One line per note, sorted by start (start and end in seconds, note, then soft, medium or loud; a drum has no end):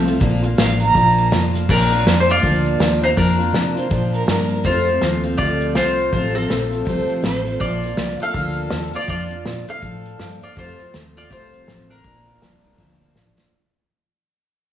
0.00 0.20 C2 loud
0.05 0.19 F3 soft
0.05 0.21 A3 soft
0.05 0.21 C4 medium
0.05 0.20 F4 medium
0.05 closed hi-hat medium
0.20 0.57 A#1 medium
0.20 0.43 A#2 loud
0.20 0.43 F3 medium
0.20 0.44 A#3 medium
0.20 0.43 D4 medium
0.20 0.41 F4 loud
0.20 kick loud
0.20 closed hi-hat medium
0.43 0.58 A#3 medium
0.43 0.59 D4 medium
0.43 0.58 F4 medium
0.43 closed hi-hat medium
0.58 0.94 A1 loud
0.58 0.94 F3 medium
0.58 0.95 A#3 medium
0.58 0.95 D4 medium
0.58 0.96 F4 medium
0.58 0.79 F5 medium
0.58 snare loud
0.58 closed hi-hat medium
0.81 1.29 A#5 loud
0.81 closed hi-hat medium
0.95 1.31 A#1 medium
0.95 1.32 A#2 medium
0.95 1.30 F3 medium
0.95 1.31 A#3 medium
0.95 1.32 D4 medium
0.95 1.33 F4 medium
0.95 kick loud
0.95 closed hi-hat medium
1.18 closed hi-hat medium
1.31 1.68 F1 loud
1.31 1.68 F3 medium
1.31 1.68 A#3 medium
1.31 1.69 D4 medium
1.31 1.70 F4 medium
1.31 snare loud
1.31 closed hi-hat loud
1.55 closed hi-hat medium
1.69 2.05 A#1 medium
1.69 1.91 A#2 medium
1.69 1.92 F3 medium
1.69 1.92 A#3 medium
1.69 2.17 D4 medium
1.69 1.91 D4 medium
1.69 1.89 F4 medium
1.69 2.17 A#4 medium
1.69 kick loud
1.69 crash medium
1.90 2.05 A#3 soft
1.90 2.06 D4 medium
1.90 2.05 F4 medium
1.90 closed hi-hat medium
2.05 2.42 F2 medium
2.05 2.28 F3 medium
2.05 2.29 A#3 medium
2.05 2.28 D4 medium
2.05 2.26 F4 medium
2.05 snare loud
2.05 closed hi-hat medium
2.20 2.29 C5 medium
2.28 2.42 A#3 soft
2.28 2.42 D4 soft
2.28 2.43 F4 soft
2.28 3.00 F4 medium
2.28 3.03 D5 medium
2.28 closed hi-hat medium
2.42 2.79 D2 medium
2.42 2.79 A#2 medium
2.42 2.79 F3 medium
2.42 2.79 A#3 medium
2.42 2.80 D4 medium
2.42 2.82 F4 medium
2.42 kick loud
2.42 closed hi-hat medium
2.66 closed hi-hat medium
2.79 3.16 D#2 loud
2.79 3.02 F3 medium
2.79 3.03 A#3 medium
2.79 3.03 D4 medium
2.79 3.01 F4 medium
2.79 snare loud
2.79 closed hi-hat medium
3.02 3.16 A#3 soft
3.02 3.17 D4 soft
3.02 3.08 D#4 medium
3.02 3.17 F4 soft
3.02 3.08 C5 medium
3.02 closed hi-hat medium
3.16 3.53 F2 medium
3.16 3.39 A#2 medium
3.16 3.40 F3 medium
3.16 3.40 A#3 medium
3.16 3.87 D4 medium
3.16 3.39 D4 medium
3.16 3.37 F4 medium
3.16 3.87 A#4 medium
3.16 kick loud
3.16 closed hi-hat medium
3.38 3.52 A#3 soft
3.38 3.53 D4 soft
3.38 3.53 F4 medium
3.38 closed hi-hat medium
3.52 3.90 C3 medium
3.52 3.76 F3 medium
3.52 3.76 A#3 medium
3.52 3.76 D4 medium
3.52 3.74 F4 medium
3.52 snare loud
3.52 closed hi-hat medium
3.75 3.90 A#3 soft
3.75 3.91 D4 medium
3.75 3.90 F4 medium
3.75 3.91 C5 medium
3.75 closed hi-hat medium
3.90 4.28 A#2 medium
3.90 4.27 A#2 medium
3.90 4.26 F3 medium
3.90 4.27 A#3 medium
3.90 4.28 D4 medium
3.90 4.30 F4 medium
3.90 4.13 C5 medium
3.90 kick loud
3.90 closed hi-hat medium
4.14 4.27 A#4 medium
4.14 closed hi-hat medium
4.27 4.64 G2 medium
4.27 4.65 F3 medium
4.27 4.65 A#3 medium
4.27 4.65 D4 medium
4.27 4.66 F4 medium
4.27 4.57 A#4 medium
4.27 snare loud
4.27 closed hi-hat medium
4.50 closed hi-hat medium
4.64 4.87 F2 medium
4.64 5.01 F2 medium
4.64 4.88 C3 medium
4.64 4.88 F3 medium
4.64 4.88 A3 medium
4.64 4.87 C4 medium
4.64 5.21 F4 medium
4.64 4.85 F4 medium
4.64 5.21 C5 medium
4.64 kick loud
4.64 closed hi-hat medium
4.87 5.00 F3 soft
4.87 5.02 A3 medium
4.87 5.02 C4 soft
4.87 5.02 F4 medium
4.87 closed hi-hat medium
5.01 5.38 D#2 loud
5.01 5.24 F3 medium
5.01 5.25 A3 medium
5.01 5.24 C4 medium
5.01 5.23 F4 medium
5.01 snare loud
5.01 closed hi-hat medium
5.24 5.38 F3 medium
5.24 5.38 A3 soft
5.24 5.39 C4 medium
5.24 5.39 F4 medium
5.24 closed hi-hat medium
5.37 5.75 D2 medium
5.37 5.76 F2 medium
5.37 5.76 C3 medium
5.37 5.74 F3 medium
5.37 5.75 A3 medium
5.37 5.76 C4 medium
5.37 5.73 F4 medium
5.37 5.78 F4 medium
5.37 5.76 D5 medium
5.37 kick loud
5.37 closed hi-hat medium
5.61 closed hi-hat medium
5.75 6.12 C2 medium
5.75 6.13 F3 medium
5.75 6.13 A3 medium
5.75 6.13 C4 medium
5.75 6.10 F4 medium
5.75 6.14 F4 medium
5.75 6.11 C5 medium
5.75 snare loud
5.75 closed hi-hat medium
5.98 closed hi-hat medium
6.12 6.49 A1 medium
6.12 6.35 F2 medium
6.12 6.35 C3 medium
6.12 6.36 F3 medium
6.12 6.35 A3 medium
6.12 6.34 C4 medium
6.12 6.34 F4 medium
6.12 6.33 F4 medium
6.12 6.36 C5 medium
6.12 kick loud
6.12 closed hi-hat medium
6.34 6.47 F3 soft
6.34 6.48 A3 soft
6.34 7.42 C4 medium
6.34 6.50 C4 soft
6.34 6.49 F4 medium
6.34 7.42 A4 medium
6.34 closed hi-hat medium
6.48 6.86 A#1 medium
6.48 6.72 F3 medium
6.48 6.72 A3 medium
6.48 6.71 C4 medium
6.48 6.70 F4 medium
6.48 snare loud
6.48 closed hi-hat medium
6.71 6.85 F3 soft
6.71 6.86 A3 soft
6.71 6.86 C4 soft
6.71 6.86 F4 medium
6.71 closed hi-hat medium
6.85 7.08 C2 medium
6.85 7.23 F2 medium
6.85 7.23 C3 medium
6.85 7.22 F3 medium
6.85 7.23 A3 medium
6.85 7.24 C4 medium
6.85 7.26 F4 loud
6.85 7.23 C5 medium
6.85 kick medium
6.85 closed hi-hat medium
7.09 closed hi-hat medium
7.23 7.59 A1 medium
7.23 7.60 F3 medium
7.23 7.61 A3 medium
7.23 7.62 C4 medium
7.23 7.62 F4 medium
7.23 7.53 C5 medium
7.23 snare loud
7.23 closed hi-hat medium
7.46 closed hi-hat medium
7.60 7.97 A#1 medium
7.60 7.83 A#2 medium
7.60 7.83 F3 medium
7.60 7.84 A#3 medium
7.60 7.83 D4 medium
7.60 8.16 F4 medium
7.60 7.81 F4 medium
7.60 8.22 D5 medium
7.60 kick loud
7.60 closed hi-hat medium
7.82 7.97 A#3 soft
7.82 7.98 D4 soft
7.82 7.97 F4 medium
7.82 closed hi-hat medium
7.97 8.19 C2 medium
7.97 8.20 F3 medium
7.97 8.21 A#3 medium
7.97 8.21 D4 medium
7.97 8.19 F4 medium
7.97 snare loud
7.97 closed hi-hat medium
8.20 8.34 A#3 soft
8.20 8.34 D4 soft
8.20 8.35 F4 soft
8.20 8.91 A4 medium
8.20 8.98 F5 loud
8.20 muted fingered electric bass stroke soft
8.20 closed hi-hat medium
8.33 8.71 D2 medium
8.33 8.71 A#2 medium
8.33 8.70 F3 medium
8.33 8.71 A#3 medium
8.33 8.72 D4 medium
8.33 8.74 F4 medium
8.33 kick loud
8.33 closed hi-hat medium
8.57 closed hi-hat medium
8.71 8.93 D#2 medium
8.71 8.94 F3 medium
8.71 8.94 A#3 medium
8.71 8.94 D4 medium
8.71 8.92 F4 medium
8.71 snare loud
8.71 closed hi-hat medium
8.93 9.08 A#3 soft
8.93 9.09 D4 soft
8.93 9.08 F4 soft
8.93 9.08 F4 medium
8.93 9.08 D5 medium
8.93 muted fingered electric bass stroke soft
8.93 closed hi-hat medium
9.08 9.44 F2 medium
9.08 9.31 A#2 medium
9.08 9.31 F3 medium
9.08 9.32 A#3 medium
9.08 9.31 D4 medium
9.08 9.64 F4 medium
9.08 9.29 F4 medium
9.08 9.65 D5 medium
9.08 kick loud
9.08 closed hi-hat medium
9.30 9.45 A#3 soft
9.30 9.46 D4 soft
9.30 9.45 F4 medium
9.30 closed hi-hat medium
9.45 9.67 A#2 loud
9.45 9.68 F3 medium
9.45 9.68 A#3 medium
9.45 9.68 D4 medium
9.45 9.66 F4 medium
9.45 snare loud
9.45 closed hi-hat medium
9.67 9.84 A#3 soft
9.67 9.82 D4 soft
9.67 9.82 F4 medium
9.67 10.38 A4 medium
9.67 10.39 F5 loud
9.67 muted fingered electric bass stroke soft
9.67 closed hi-hat medium
9.83 10.18 A2 medium
9.83 10.18 F3 medium
9.83 10.19 D4 medium
9.83 10.21 F4 medium
9.83 kick loud
9.83 closed hi-hat medium
10.06 closed hi-hat medium
10.18 10.40 G2 loud
10.18 10.56 F3 medium
10.18 10.57 A#3 medium
10.18 10.57 D4 medium
10.18 10.58 F4 medium
10.18 snare loud
10.18 closed hi-hat medium
10.43 10.56 F4 medium
10.43 10.56 D5 medium
10.43 muted fingered electric bass stroke soft
10.43 closed hi-hat medium
10.56 10.79 F2 medium
10.56 10.78 F2 medium
10.56 10.79 C3 medium
10.56 10.79 F3 medium
10.56 10.79 A3 medium
10.56 10.79 C4 medium
10.56 10.77 F4 medium
10.56 10.92 F4 medium
10.56 10.92 C5 medium
10.56 kick loud
10.56 closed hi-hat medium
10.79 10.91 F3 soft
10.79 10.92 A3 soft
10.79 10.94 C4 medium
10.79 10.93 F4 medium
10.79 muted fingered electric bass stroke soft
10.79 closed hi-hat medium
10.92 11.30 D#2 medium
10.92 11.31 F3 medium
10.92 11.30 A3 medium
10.92 11.31 C4 medium
10.92 11.32 F4 medium
10.92 snare loud
10.92 closed hi-hat medium
11.17 11.30 F4 medium
11.17 11.30 D5 medium
11.17 closed hi-hat medium
11.30 11.67 C2 medium
11.30 11.67 F2 medium
11.30 11.67 C3 medium
11.30 11.67 F3 medium
11.30 11.67 A3 medium
11.30 11.68 C4 medium
11.30 11.87 F4 medium
11.30 11.70 F4 medium
11.30 11.90 C5 medium
11.30 kick loud
11.30 closed hi-hat medium
11.53 closed hi-hat medium
11.67 12.04 A1 loud
11.67 11.90 F3 medium
11.67 11.90 A3 medium
11.67 11.90 C4 medium
11.67 11.88 F4 medium
11.67 snare loud
11.67 closed hi-hat medium
11.89 12.03 F3 soft
11.89 12.05 A3 soft
11.89 12.05 C4 soft
11.89 13.12 D4 medium
11.89 12.04 F4 soft
11.89 13.11 A#4 medium
11.89 closed hi-hat medium
12.04 12.40 A#1 medium
12.04 12.27 A#2 medium
12.04 12.27 F3 medium
12.04 12.27 A#3 medium
12.04 12.27 D4 medium
12.04 12.25 F4 medium
12.04 kick loud
12.04 closed hi-hat medium
12.26 12.41 A#3 soft
12.26 12.42 D4 soft
12.26 12.41 F4 medium
12.26 closed hi-hat medium
12.40 12.77 C2 loud
12.40 12.63 F3 medium
12.40 12.64 A#3 medium
12.40 12.65 D4 medium
12.40 12.63 F4 medium
12.40 snare loud
12.40 closed hi-hat medium
12.64 12.78 A#3 soft
12.64 12.78 D4 medium
12.64 12.78 F4 medium
12.64 closed hi-hat medium
12.78 13.14 D2 medium
12.78 13.15 A#2 medium
12.78 13.14 F3 medium
12.78 13.15 A#3 medium
12.78 13.16 D4 medium
12.78 13.16 F4 loud
12.78 kick loud
12.78 closed hi-hat medium
13.01 closed hi-hat medium
13.14 13.36 A1 medium
13.14 13.52 F3 medium
13.14 13.53 A#3 medium
13.14 13.53 D4 medium
13.14 13.54 F4 medium
13.14 snare medium
13.38 snare medium